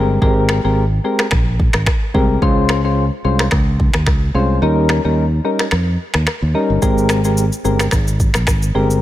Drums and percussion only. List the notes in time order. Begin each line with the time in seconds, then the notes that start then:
0.22 kick
0.49 finger snap, cross-stick
1.19 finger snap, cross-stick
1.31 finger snap, kick, cross-stick
1.60 kick
1.73 finger snap, cross-stick
1.86 finger snap, kick, cross-stick
2.15 kick
2.42 kick
2.69 finger snap, cross-stick
3.39 finger snap, cross-stick
3.51 finger snap, kick, cross-stick
3.80 kick
3.94 finger snap, cross-stick
4.06 finger snap, kick, cross-stick
4.89 finger snap, cross-stick
5.59 finger snap, cross-stick
5.71 finger snap, cross-stick
6.14 finger snap, cross-stick
6.27 finger snap, cross-stick
6.82 kick, shaker
6.98 shaker
7.09 finger snap, cross-stick, shaker
7.24 shaker
7.37 shaker
7.52 shaker
7.65 shaker
7.79 finger snap, cross-stick, shaker
7.91 finger snap, kick, cross-stick, shaker
8.08 shaker
8.20 kick, shaker
8.34 finger snap, cross-stick, shaker
8.47 finger snap, kick, cross-stick, shaker
8.62 shaker
8.90 shaker